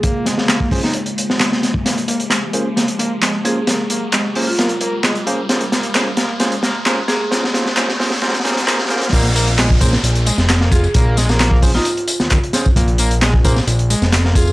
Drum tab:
CC |--------------------------------|--------------------------------|--------------------------------|--------------------------------|
HH |x---x---x---o---x-x-x---x---x---|x-x-x-x-x---x---x-x-x---x---x---|x---x---x---o---x-x-x---x-x-x---|x-x-x-x-x---x---x-x-x---x---x---|
TB |--------------------------------|--------------------------------|--------------------------------|--------------------------------|
CP |--------x---------------x-------|--------x---------------x-------|--------x---------------x-------|--------x---------------x-------|
SD |----o-o-o-----o-------o-o-o-o---|o-------o-------o-------o-------|o-------o-------o-------o-------|o---o---o---o---o---o---o---o---|
BD |o---------o-o-----------------o-|--------------------------------|--------------------------------|--------------------------------|

CC |--------------------------------|x-------------------------------|--------------------------------|--------------------------------|
HH |x---x---x---o---x-x-x-x-x---x-x-|x-x-x-x-x---x---x-x-x---x---x---|x---x---x---o---x-x-x---x-x-x---|x-x-x-x-x---x---x-x-x---x---x---|
TB |--------------------------------|x---x-x-x---x-x-x---x-x-x---x-x-|x---x-x-x---x-x-x---x-x-x---x-x-|x---x-x-x---x-x-x---x-x-x---x-x-|
CP |--------x---------------x-------|--------x---------------x-------|--------x---------------x-------|--------x---------------x-------|
SD |o-o-o-o-o-o-o-o-oooooooooooooooo|--------o-----o-------o-o-o-----|----o-o-o-----o-------o-----o---|--------o-----o-------o-o-o-----|
BD |--------------------------------|o---------o-o---------------o---|o---------o-o-----------o-----o-|o---------o-o---------------o---|